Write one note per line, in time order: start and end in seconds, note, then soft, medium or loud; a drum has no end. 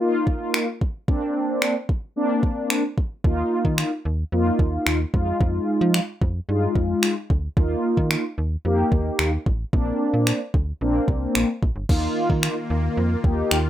0.00 0.67 A#3 medium
0.00 0.67 D#4 medium
0.00 0.67 F4 medium
0.27 kick medium
0.54 finger snap loud
0.81 kick medium
1.08 1.75 A#3 medium
1.08 1.75 C4 medium
1.08 1.75 D4 loud
1.08 kick loud
1.62 finger snap loud
1.89 kick loud
2.16 2.83 A#3 medium
2.16 2.83 C4 medium
2.16 2.83 D4 loud
2.43 kick medium
2.70 finger snap loud
2.98 kick medium
3.24 3.43 D#2 loud
3.24 3.91 A#3 medium
3.24 3.91 D#4 medium
3.24 3.91 F4 medium
3.24 kick loud
3.65 3.84 D#3 loud
3.65 kick medium
3.78 finger snap loud
4.05 4.24 D#2 medium
4.32 4.51 F2 medium
4.32 4.99 A#3 medium
4.32 4.99 D#4 medium
4.32 4.99 F4 medium
4.59 4.78 D#2 medium
4.59 kick loud
4.87 5.05 D#2 medium
4.87 finger snap loud
5.13 5.33 F2 medium
5.13 6.00 G#3 medium
5.13 6.00 D#4 medium
5.13 6.00 F4 loud
5.13 kick loud
5.41 5.59 F2 loud
5.41 kick loud
5.81 6.00 F3 loud
5.94 finger snap loud
6.22 6.40 F2 loud
6.22 kick medium
6.48 6.68 G2 medium
6.48 7.15 G#3 medium
6.48 7.16 D#4 medium
6.48 7.16 F4 medium
6.75 6.94 F2 medium
6.75 kick medium
7.03 finger snap loud
7.30 7.49 D2 medium
7.30 kick loud
7.57 7.76 D#2 loud
7.57 8.23 A#3 medium
7.57 8.24 D#4 medium
7.57 8.24 F4 medium
7.57 kick loud
7.97 8.16 D#3 loud
7.97 kick medium
8.11 finger snap loud
8.38 8.57 D#2 medium
8.65 8.84 F2 medium
8.65 9.32 A#3 medium
8.65 9.32 D#4 medium
8.65 9.32 G4 medium
8.92 9.11 D#2 loud
8.92 kick loud
9.19 9.38 D#2 medium
9.19 finger snap loud
9.46 9.65 A1 medium
9.46 kick medium
9.73 9.92 A#1 loud
9.73 10.40 A#3 medium
9.73 10.40 C4 medium
9.73 10.40 D4 medium
9.73 kick loud
10.14 10.32 A#2 medium
10.27 finger snap loud
10.54 10.73 D2 medium
10.54 kick loud
10.81 11.00 A#1 loud
10.81 11.48 A#3 medium
10.81 11.48 C4 medium
10.81 11.48 D4 loud
11.08 11.27 C2 medium
11.08 kick medium
11.35 11.45 A#1 medium
11.35 finger snap loud
11.63 11.72 A#1 medium
11.63 kick loud
11.76 11.85 G1 medium
11.89 12.08 D#2 loud
11.89 13.70 D#3 medium
11.89 12.56 A#3 medium
11.89 13.70 A#3 medium
11.89 12.56 D#4 medium
11.89 13.70 F4 medium
11.89 12.56 F4 loud
11.89 kick loud
11.89 crash medium
12.30 12.49 D#3 loud
12.30 kick medium
12.43 finger snap loud
12.70 12.89 D#2 loud
12.97 13.16 F2 loud
13.24 13.43 D#2 medium
13.24 13.58 A#3 medium
13.24 13.58 D#4 medium
13.24 13.58 G4 medium
13.24 kick loud
13.51 13.70 D#2 medium
13.51 finger snap loud